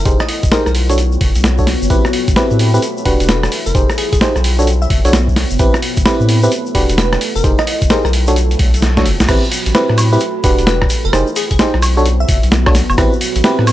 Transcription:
0.05 F1 D#4 G4 G#4 C5, kick, closed hi-hat, shaker
0.20 D#5, cross-stick, shaker
0.29 open hi-hat
0.43 F1, kick, closed hi-hat, shaker
0.52 D#4 G4 G#4 A#4 C5, snare, shaker
0.66 B1 A#4, cross-stick, shaker
0.75 B3, open hi-hat
0.89 D4 F#4 A4 C#5, closed hi-hat, shaker
0.98 F#4, closed hi-hat, shaker
1.12 shaker
1.21 F#1, kick, open hi-hat
1.35 B1, closed hi-hat, shaker
1.44 snare, closed hi-hat, shaker
1.58 D4 F#4 A4 C#5, kick, shaker
1.67 snare, open hi-hat
1.82 F#1, shaker
1.90 A1 C4 E4 G4 A4 B4, kick, closed hi-hat, shaker
2.05 cross-stick, shaker
2.13 open hi-hat
2.28 A1, kick, closed hi-hat, shaker
2.36 C4 E4 G4 B4, snare, shaker
2.51 A2, shaker
2.59 open hi-hat
2.74 C4 E4 G4 B4, shaker
2.82 closed hi-hat, shaker
2.97 shaker
3.05 E1 D4 F#4 G4 B4, kick, open hi-hat
3.20 E1, closed hi-hat, shaker
3.29 B4, snare, closed hi-hat, shaker
3.43 cross-stick, shaker
3.52 open hi-hat
3.66 F1 A#4, shaker
3.75 F1 D#4 G4 G#4 C5, kick, closed hi-hat, shaker
3.90 cross-stick, shaker
3.98 G#4, open hi-hat
4.13 F1 G#4, kick, closed hi-hat, shaker
4.21 D#4 G4 G#4 C5, snare, shaker
4.36 B1, cross-stick, shaker
4.44 B3, open hi-hat
4.59 D4 F#4 A4 C#5, shaker
4.67 F#4, closed hi-hat, shaker
4.82 E5, shaker
4.90 F#1, kick, open hi-hat
5.05 B1 D4 F#4 A4 C#5, closed hi-hat, shaker
5.13 snare, closed hi-hat, shaker
5.28 kick, shaker
5.36 snare, open hi-hat
5.50 F#1, shaker
5.59 A1 C4 E4 G4 A4 B4, kick, closed hi-hat, shaker
5.74 cross-stick, shaker
5.82 open hi-hat
5.97 A1, kick, closed hi-hat, shaker
6.06 C4 E4 G4 B4, snare, shaker
6.20 A2, shaker
6.29 open hi-hat
6.43 C4 E4 G4 B4, shaker
6.51 closed hi-hat, shaker
6.66 shaker
6.75 E1 D4 F#4 G4 B4, kick, open hi-hat
6.89 E1, closed hi-hat, shaker
6.98 B4, snare, closed hi-hat, shaker
7.12 cross-stick, shaker
7.21 open hi-hat
7.36 F1 A#4, shaker
7.44 F1 D#4 G4 G#4 C5, kick, closed hi-hat, shaker
7.58 D#5, cross-stick, shaker
7.67 open hi-hat
7.82 F1, kick, closed hi-hat, shaker
7.90 D#4 G4 G#4 A#4 C5, snare, shaker
8.05 B1 A#4, cross-stick, shaker
8.13 B3, open hi-hat
8.27 D4 F#4 A4 C#5, closed hi-hat, shaker
8.36 closed hi-hat, swell, shaker
8.48 F#4, closed hi-hat, shaker
8.59 B1, kick, open hi-hat
8.74 closed hi-hat, shaker
8.82 snare, closed hi-hat, shaker
8.97 D4 F#4 A4 C#5, kick, snare, shaker
9.05 F#1, open hi-hat
9.20 B1, snare, shaker
9.28 A1 C4 E4 G4 A4 B4, kick, cross-stick, closed hi-hat, crash, shaker
9.44 shaker
9.52 open hi-hat, shaker
9.66 A1, closed hi-hat, shaker
9.75 C4 E4 G4 B4, snare, shaker
9.89 A2, cross-stick
9.98 open hi-hat, high woodblock, shaker
10.13 C4 E4 G4 B4, shaker
10.20 closed hi-hat, shaker
10.44 E1 D4 F#4 G4 B4, kick, open hi-hat, shaker
10.59 E1, closed hi-hat, shaker
10.67 B4, snare, closed hi-hat, shaker
10.82 kick, cross-stick
10.90 open hi-hat, shaker
11.04 F1 A#4, shaker
11.13 F1 D#4 G4 G#4 C5, cross-stick, closed hi-hat, shaker
11.27 shaker
11.36 G#4, open hi-hat, shaker
11.51 F1 G#4, kick, closed hi-hat, shaker
11.59 D#4 G4 G#4 C5, snare, shaker
11.74 B1, cross-stick
11.82 B3, open hi-hat, high woodblock, shaker
11.97 D4 F#4 A4 C#5, shaker
12.03 F#4, closed hi-hat, shaker
12.20 E5
12.29 F#1, kick, open hi-hat, shaker
12.43 B1, closed hi-hat, shaker
12.51 snare, closed hi-hat, shaker
12.66 D4 F#4 A4 C#5, kick, cross-stick, high woodblock
12.75 snare, open hi-hat, shaker
12.89 F#1, high woodblock, shaker
12.98 A1 C4 E4 G4 A4 B4, kick, cross-stick, closed hi-hat, shaker
13.13 shaker
13.21 open hi-hat, shaker
13.36 A1, closed hi-hat, shaker
13.44 C4 E4 G4 B4, snare, shaker
13.59 A2, cross-stick
13.67 open hi-hat, high woodblock, shaker

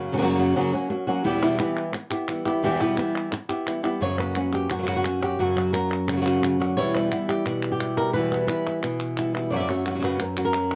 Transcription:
Already playing: F#2 C#3 F#3 A#3 C#4 F#4
0.12 C#3 F#3 A#3 C#4 F#4
0.17 C#3 F#3 A#3 C#4 F#4
0.22 F#2 C#3 F#3 A#3 C#4 F#4
0.26 C#3 F#3 A#3 F#4
0.30 C#3 F#3 C#4 F#4
0.34 F#2 A#3 C#4 F#4
0.38 C#3 F#3 A#3 C#4 F#4
0.55 F#2 C#3 F#3 A#3 C#4 F#4, muted nylon-string guitar stroke
0.73 F#3 A#3 C#4 F#4
0.90 F#3 A#3 C#4 F#4, muted nylon-string guitar stroke
1.07 F#3 A#3 C#4 F#4
1.24 E2 B2 E3 G3 B3 E4 G4
1.34 B2 E3 G3 B3 E4
1.38 B2 E3 G3 B3 E4 G4
1.43 E2 B2 E3 G3 B3 E4
1.59 E3 G3 B3 E4 G4, clap
1.77 clap
1.94 muted nylon-string guitar stroke, clap
2.10 B3 E4 G4, clap
2.28 E3 G3 B3 E4, clap
2.46 E3 G3 B3 E4 G4
2.63 E2 B2 E3 G3 B3 E4 G4
2.71 B2 E3 G3 B3 E4
2.75 B2 E3 G3 B3 E4
2.80 E2 B2 E3 G3 B3 E4 G4
2.97 E3 G3 B3 E4 G4, clap
3.32 muted nylon-string guitar stroke, clap
3.49 B3 E4 G4, clap
3.66 E3 G3 B3 E4, clap
3.83 E3 G3 B3 E4 G4, clap
4.01 F#2 C#3 F#3 A#3 C#4 F#4 C#5
4.18 A#3 B4
4.35 F#3 A#3 C#4 F#4, clap
4.53 G4, clap
4.70 F#2 F#4, muted nylon-string guitar stroke, clap
4.78 C#3 F#3 A#3 C#4 F#4
4.82 C#3 F#3 A#3 C#4 F#4
4.87 F#2 C#3 F#3 A#3 C#4 F#4, clap
4.96 F#4
5.04 F#3 A#3 C#4 F#4, clap
5.21 F#3 A#3 C#4 F#4 G4
5.39 F#2 C#3 F#3 A#3 C#4 F#4
5.56 F#3
5.73 F#3 A#3 C#4 F#4 A#4, clap
6.08 C#3, muted nylon-string guitar stroke, clap
6.12 C#3 F#3 A#3 C#4 F#4
6.16 C#3 F#3 A#3 C#4 F#4
6.20 C#3 F#3 A#3 C#4 F#4
6.25 F#2 C#3 F#3 A#3 C#4 F#4, clap
6.42 C#3 F#3 A#3 C#4 F#4, clap
6.59 D3 F#3 A#3 C#4 F#4, clap
6.76 E2 B2 E3 G3 B3 E4 C#5
6.94 G3 B4
7.11 E3 G3 B3 E4, clap
7.29 G4, clap
7.45 B2 F#4, muted nylon-string guitar stroke, clap
7.63 clap
7.72 G4
7.80 E3 G3 B3 E4, clap
7.97 E3 G3 B3 E4 A#4, clap
8.13 E2 B2 E3 G3 B3 E4 B4
8.31 B3
8.47 E3 G3 B3 E4 B4, clap
8.66 E4, clap
8.83 B2, muted nylon-string guitar stroke, clap
9.00 clap
9.17 E3 G3 B3 E4, clap
9.34 E3 G3 B3 E4
9.50 F#2 C#3 F#3 A#3 C#4 F#4 D5
9.56 D5 E5
9.68 F#3 A#3 C#4 F#4 C#5
9.86 C#3 F#3 A#3 C#4 F#4, clap
9.90 C#3 A#3 C#4 F#4
9.94 F#3 A#3 C#4 F#4
9.98 C#3 F#3 A#3 C#4 F#4
10.03 F#2 C#3 F#3 A#3 C#4 F#4 B4
10.20 F#2 A#4, muted nylon-string guitar stroke, clap
10.37 F#3 A#3 C#4 F#4, clap
10.45 A#4
10.54 F#3 A#3 C#4 F#4, clap

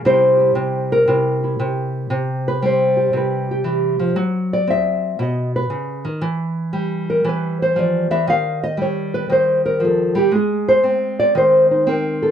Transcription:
0.05 C3 G3 E4 G4 C5
0.40 E4
0.55 C3
0.92 A#4
1.07 C3 E4
1.44 E4
1.59 C3
2.10 C3
2.48 B4
2.62 G3 C5
2.97 G4
3.13 C3 B4
3.51 G4
3.64 E3
3.99 F3
4.16 F#3
4.53 D5
4.67 C4 E5
5.19 B2 D#5
5.56 B4
5.70 C#3
6.05 D#3
6.21 E3
6.73 G3
7.10 A#4
7.24 E3
7.29 B4
7.62 C5
7.76 F3 D5
8.11 E3 E5
8.27 D#3 F5
8.63 D#5
8.77 G3
8.82 C#5
9.14 B4
9.30 D#3 C5
9.66 A#4
9.80 F3
9.85 A4
10.15 G3 G4
10.32 G#3 G#4
10.68 C5
10.83 C4
11.19 D5
11.35 D#3 C5
11.71 D#4
11.87 C4 A#4
12.22 A4

